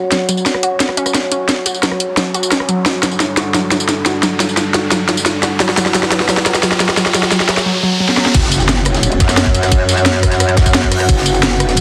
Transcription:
Already playing: analog synth pad F#4 C#5 F#5, riser
0.12 synth arpeggio sound F#3, snare, closed hi-hat, tambourine
0.29 synth arpeggio sound F#3, closed hi-hat, tambourine
0.37 tambourine
0.46 snare, closed hi-hat, tambourine
0.54 cross-stick
0.63 synth arpeggio sound F#4, closed hi-hat
0.80 snare, closed hi-hat, tambourine
0.89 cross-stick
0.97 synth arpeggio sound C#4, closed hi-hat, tambourine
1.06 cross-stick, tambourine
1.14 snare, closed hi-hat, tambourine
1.32 synth arpeggio sound C#4, closed hi-hat, tambourine
1.49 snare, closed hi-hat, tambourine
1.66 synth arpeggio sound F#4, closed hi-hat, tambourine
1.74 tambourine
1.83 synth arpeggio sound F#3, snare, closed hi-hat, tambourine
1.92 cross-stick
2.00 closed hi-hat
2.17 synth arpeggio sound F#3, snare, closed hi-hat, tambourine
2.34 synth arpeggio sound F#4, closed hi-hat, tambourine
2.43 tambourine
2.52 synth arpeggio sound C#4, snare, closed hi-hat, tambourine
2.60 cross-stick
2.69 synth arpeggio sound F#3, closed hi-hat, tambourine
2.86 synth arpeggio sound F#3, analog synth pad G3 D4 A4, snare, closed hi-hat, tambourine
3.03 synth arpeggio sound F#3, snare, closed hi-hat, tambourine
3.11 tambourine
3.20 snare, closed hi-hat, tambourine
3.37 synth arpeggio sound F#4, snare, closed hi-hat
3.54 synth arpeggio sound F#3, snare, closed hi-hat, tambourine
3.71 synth arpeggio sound F#3, snare, closed hi-hat, tambourine
3.80 tambourine
3.89 snare, closed hi-hat, tambourine
4.06 synth arpeggio sound F#4, snare, closed hi-hat, tambourine
4.23 synth arpeggio sound F#3, snare, closed hi-hat, tambourine
4.40 synth arpeggio sound F#3, snare, closed hi-hat, tambourine
4.49 tambourine
4.57 snare, closed hi-hat, tambourine
4.74 synth arpeggio sound F#4, snare, closed hi-hat
4.92 synth arpeggio sound F#3, snare, closed hi-hat, tambourine
5.09 synth arpeggio sound F#3, snare, closed hi-hat, tambourine
5.17 tambourine
5.26 snare, closed hi-hat, tambourine
5.43 synth arpeggio sound F#4, snare, closed hi-hat, tambourine
5.60 synth arpeggio sound F#3, analog synth pad B4, snare, closed hi-hat, tambourine
5.69 snare
5.77 synth arpeggio sound F#3, snare, closed hi-hat, tambourine
5.86 snare, tambourine
5.94 synth arpeggio sound F#3, snare, closed hi-hat, tambourine
6.03 snare
6.12 synth arpeggio sound F#3, snare, closed hi-hat
6.20 snare
6.29 synth arpeggio sound F#3, snare, closed hi-hat, tambourine
6.37 snare
6.46 synth arpeggio sound F#3, snare, closed hi-hat, tambourine
6.54 snare, tambourine
6.63 synth arpeggio sound F#3, snare, closed hi-hat, tambourine
6.72 snare
6.80 synth arpeggio sound F#3, snare, closed hi-hat, tambourine
6.89 snare
6.97 synth arpeggio sound F#3, snare, closed hi-hat, tambourine
7.06 snare
7.14 synth arpeggio sound F#3, snare, closed hi-hat, tambourine
7.23 snare, tambourine
7.32 synth arpeggio sound F#3, snare, closed hi-hat, tambourine
7.40 snare
7.49 synth arpeggio sound F#3, snare, closed hi-hat, tambourine
7.57 snare
7.66 synth arpeggio sound F#3
7.83 synth arpeggio sound F#3
8.00 synth arpeggio sound F#3
8.09 snare
8.17 synth arpeggio sound F#3, snare
8.26 snare
8.34 wobble bass F#1, analog synth pad F#4 C#5 F#5, kick, closed hi-hat, crash, ride, tambourine, impact
8.43 snare
8.52 closed hi-hat, ride, tambourine
8.60 tambourine
8.69 snare, closed hi-hat, ride, tambourine
8.77 ride
8.85 cross-stick, closed hi-hat, ride, tambourine
8.94 snare, closed hi-hat
9.03 closed hi-hat, ride, tambourine
9.12 closed hi-hat
9.20 wobble bass F#2, kick, snare, closed hi-hat, ride, tambourine
9.29 cross-stick, snare, tambourine
9.37 snare, closed hi-hat, ride, tambourine
9.46 kick
9.54 closed hi-hat, ride, tambourine
9.63 cross-stick, snare, closed hi-hat
9.72 kick, closed hi-hat, ride, tambourine
9.89 snare, closed hi-hat, ride, tambourine
9.97 ride, tambourine
10.05 snare, closed hi-hat, ride, tambourine
10.14 ride
10.23 kick, cross-stick, open hi-hat, ride, tambourine
10.32 snare, closed hi-hat
10.40 cross-stick, closed hi-hat, ride, tambourine
10.49 closed hi-hat
10.57 wobble bass F#2, kick, snare, closed hi-hat, ride, tambourine
10.66 kick, tambourine
10.73 snare, closed hi-hat, ride, tambourine
10.83 kick, ride
10.92 cross-stick, closed hi-hat, open hi-hat, tambourine
11.00 cross-stick, closed hi-hat
11.09 wobble bass F#1, analog synth pad B4, kick, closed hi-hat, ride, tambourine
11.18 snare
11.26 closed hi-hat, ride, tambourine
11.34 tambourine
11.43 snare, closed hi-hat, ride, tambourine
11.52 ride
11.60 cross-stick, closed hi-hat, ride, tambourine
11.69 snare, closed hi-hat
11.77 closed hi-hat, ride, tambourine

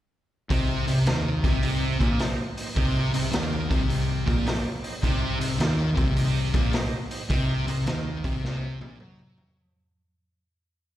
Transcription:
0.50 fingered electric bass C2, distorted electric guitar C3, tonewheel organ D#4 G4 C5 D#5, kick, open hi-hat
0.87 fingered electric bass C2, distorted electric guitar C3, tonewheel organ D#4 G4 C5 D5, open hi-hat
1.06 fingered electric bass D#2, distorted electric guitar D#3, tonewheel organ D#4 G4 C5 D#5, snare, open hi-hat
1.43 fingered electric bass C2, distorted electric guitar C3, tonewheel organ D#4 G4 C5 D#5, kick, open hi-hat
1.63 tonewheel organ D#4 G4 C5 D#5, open hi-hat
2.00 fingered electric bass A#1, distorted electric guitar A#2, tonewheel organ D#4 G4 C5 D#5, kick, open hi-hat
2.19 tonewheel organ D#4 G4 C5 D#5, snare, open hi-hat
2.57 tonewheel organ D#4 G4 C5 D#5, open hi-hat
2.76 fingered electric bass C2, distorted electric guitar C3, tonewheel organ D#4 G4 C5 D#5, kick, open hi-hat
3.14 fingered electric bass C2, distorted electric guitar C3, tonewheel organ D#4 G4 C5 D#5, open hi-hat
3.32 fingered electric bass D#2, distorted electric guitar D#3, tonewheel organ D#4 G4 C5 D5, snare, open hi-hat
3.70 fingered electric bass C2, distorted electric guitar C3, tonewheel organ D#4 G4 C5 D#5, kick, open hi-hat
3.89 tonewheel organ D#4 G4 C5 D5, open hi-hat
4.26 fingered electric bass A#1, distorted electric guitar A#2, tonewheel organ D#4 G4 C5 D#5, kick, open hi-hat
4.45 tonewheel organ D#4 G4 C5 D5, snare, open hi-hat
4.83 tonewheel organ D#4 G4 C5 D#5, open hi-hat
5.02 fingered electric bass C2, distorted electric guitar C3, tonewheel organ D#4 G4 C5 D5, kick, open hi-hat
5.39 fingered electric bass C2, distorted electric guitar C3, tonewheel organ D#4 G4 C5 D#5, open hi-hat
5.58 fingered electric bass D#2, distorted electric guitar D#3, tonewheel organ D#4 G4 C5 D5, snare, open hi-hat
5.95 fingered electric bass C2, distorted electric guitar C3, tonewheel organ D#4 G4 C5 D#5, kick, open hi-hat
6.16 tonewheel organ D#4 G4 C5 D#5, open hi-hat
6.54 fingered electric bass A#1, distorted electric guitar A#2, tonewheel organ D#4 G4 C5 D#5, kick, open hi-hat
6.73 tonewheel organ D#4 G4 C5 D#5, snare, open hi-hat
7.11 tonewheel organ D#4 G4 C5 D#5, open hi-hat
7.30 fingered electric bass C2, distorted electric guitar C3, tonewheel organ D#4 G4 C5 D#5, kick, open hi-hat
7.67 fingered electric bass C2, distorted electric guitar C3, tonewheel organ D#4 G4 C5 D#5, open hi-hat
7.86 fingered electric bass D#2, distorted electric guitar D#3, tonewheel organ D#4 G4 C5 D#5, snare, open hi-hat
8.24 fingered electric bass C2, distorted electric guitar C3, tonewheel organ D#4 G4 C5 D#5, kick, open hi-hat
8.43 tonewheel organ D#4 G4 C5 D#5, snare
8.81 fingered electric bass A#1, distorted electric guitar A#2, tonewheel organ D#4 G4 C5 D#5, high tom
9.00 fingered electric bass F#2, distorted electric guitar F#3, tonewheel organ D#4 G4 C5 D#5, mid tom
9.19 mid tom
9.37 tonewheel organ D#4 G4 C5 D#5, floor tom
9.47 floor tom

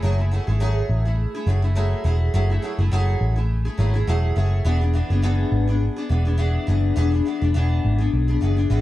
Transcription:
0.02 picked electric bass F#1, steel-string acoustic guitar F#3 A3 E4 G#4
0.18 steel-string acoustic guitar A3 E4 G#4
0.31 steel-string acoustic guitar F#3 A3 E4 G#4
0.47 picked electric bass G#1, steel-string acoustic guitar A3 E4 G#4
0.60 steel-string acoustic guitar F#3 A3 E4 G#4
0.89 picked electric bass A1
1.05 steel-string acoustic guitar A3 E4 G#4
1.35 steel-string acoustic guitar A3 E4 G#4
1.47 picked electric bass F#1, steel-string acoustic guitar F#3 A3 E4 G#4
1.62 steel-string acoustic guitar A3 E4 G#4
1.75 steel-string acoustic guitar F#3 A3 E4 G#4
2.04 picked electric bass E1, steel-string acoustic guitar F#3 A3 E4 G#4
2.34 picked electric bass F#1, steel-string acoustic guitar F#3 A3 E4 G#4
2.50 steel-string acoustic guitar A3 E4 G#4
2.62 steel-string acoustic guitar F#3 A3 E4 G#4
2.78 picked electric bass F#1, steel-string acoustic guitar A3 E4 G#4
2.91 picked electric bass F#1, steel-string acoustic guitar F#3 A3 E4 G#4
3.21 picked electric bass A1
3.36 steel-string acoustic guitar A3 E4 G#4
3.65 steel-string acoustic guitar A3 E4 G#4
3.77 picked electric bass G#1, steel-string acoustic guitar F#3 A3 E4 G#4
3.94 steel-string acoustic guitar A3 E4 G#4
4.07 picked electric bass E1, steel-string acoustic guitar F#3 A3 E4 G#4
4.36 picked electric bass F#1, steel-string acoustic guitar F#3 A3 E4 G#4
4.65 picked electric bass E1, steel-string acoustic guitar E3 B3 D4 G#4
4.81 steel-string acoustic guitar B3 D4 G#4
4.93 steel-string acoustic guitar E3 B3 D4 G#4
5.10 picked electric bass F#1, steel-string acoustic guitar B3 D4 G#4
5.22 steel-string acoustic guitar E3 B3 D4 G#4
5.52 picked electric bass G#1
5.67 steel-string acoustic guitar B3 D4 G#4
5.96 steel-string acoustic guitar B3 D4 G#4
6.09 picked electric bass E1, steel-string acoustic guitar E3 B3 D4 G#4
6.25 steel-string acoustic guitar B3 D4 G#4
6.38 steel-string acoustic guitar E3 B3 D4 G#4
6.67 picked electric bass F#1, steel-string acoustic guitar E3 B3 D4 G#4
6.96 picked electric bass E1, steel-string acoustic guitar E3 B3 D4 G#4
7.11 steel-string acoustic guitar B3 D4 G#4
7.25 steel-string acoustic guitar E3 B3 D4 G#4
7.41 picked electric bass E1, steel-string acoustic guitar B3 D4 G#4
7.54 picked electric bass E1, steel-string acoustic guitar E3 B3 D4 G#4
7.85 picked electric bass G#1
7.98 steel-string acoustic guitar B3 D4 G#4
8.13 picked electric bass B1
8.28 steel-string acoustic guitar B3 D4 G#4
8.41 picked electric bass F#1, steel-string acoustic guitar E3 B3 D4 G#4
8.57 steel-string acoustic guitar B3 D4 G#4
8.70 picked electric bass G#1, steel-string acoustic guitar E3 B3 D4 G#4

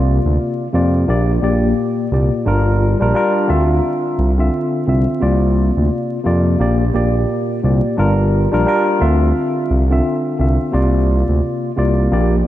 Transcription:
Already playing: analog synth bass C2, tine electric piano C3 A#3 F4 D5
0.25 analog synth bass D2
0.72 analog synth bass F2, tine electric piano C3 A#3 F4 D5
1.07 analog synth bass A#1, tine electric piano A#2 A#3 G4 D5
1.41 analog synth bass A#1, tine electric piano A#2 A#3 G4 D5
2.11 analog synth bass C2, tine electric piano A#2 A#3 G4 D5
2.45 analog synth bass G1, tine electric piano G3 D4 F4 A#4
3.00 analog synth bass A#1, tine electric piano G3 D4 F4 A#4
3.14 tine electric piano G3 D4 F4 A#4
3.47 analog synth bass D2, tine electric piano D3 C4 F4 E5
4.18 analog synth bass C2
4.38 tine electric piano D3 C4 F4 E5
4.87 analog synth bass C2, tine electric piano D3 C4 F4 E5
5.20 analog synth bass C2, tine electric piano C3 A#3 F4 D5
5.77 analog synth bass D2
6.24 analog synth bass F2, tine electric piano C3 A#3 F4 D5
6.59 analog synth bass A#1, tine electric piano A#2 A#3 G4 D5
6.93 analog synth bass A#1, tine electric piano A#2 A#3 G4 D5
7.63 analog synth bass C2, tine electric piano A#2 A#3 G4 D5
7.97 analog synth bass G1, tine electric piano G3 D4 F4 A#4
8.51 analog synth bass A#1, tine electric piano G3 D4 F4 A#4
8.66 tine electric piano G3 D4 F4 A#4
8.99 analog synth bass D2, tine electric piano D3 C4 F4 E5
9.70 analog synth bass C2
9.90 tine electric piano D3 C4 F4 E5
10.39 analog synth bass C2, tine electric piano D3 C4 F4 E5
10.72 analog synth bass C2, tine electric piano C3 A#3 F4 D5
11.29 analog synth bass D2
11.76 analog synth bass C2, tine electric piano C3 A#3 F4 D5
12.11 analog synth bass A#1, tine electric piano A#2 A#3 G4 D5

